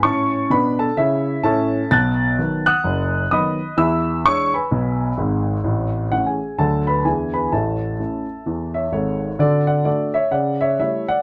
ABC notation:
X:1
M:4/4
L:1/16
Q:"Swing" 1/4=128
K:A
V:1 name="Grand piano"
[cac']4 [Bb]2 [Aa]2 [Ece]4 [Aea]4 | [af'a']6 [f^d'f']6 [^dbd']4 | [ebe']4 [cc']2 [Bgb]6 z4 | z4 f [Gg]3 [Aa]2 [Bb]2 [Gg]2 [Bb]2 |
[Aea]8- [Aea]2 [ce]2 [Ac]4 | [K:D] [Ad]2 [df]2 [Ad]2 [ce]2 [df]2 [ce]2 [ce]2 [df]2 |]
V:2 name="Grand piano" clef=bass
[A,,C]4 [B,,D]4 C,4 [A,,C]4 | [B,,,B,,]4 [^D,F,B,]4 [F,,,F,,]4 [D,F,B,]4 | [E,,E,]4 [E,G,D]4 [B,,,B,,]4 [G,,,G,,]4 | [A,,,A,,]4 [E,A,C]4 [D,,D,F,A,F]4 [E,,E,B,DE]4 |
[A,,,A,,]4 [A,CE]4 [E,,E,]4 [G,,,G,,]4 | [K:D] [D,F]4 [A,DF]4 C,4 [G,A,E]4 |]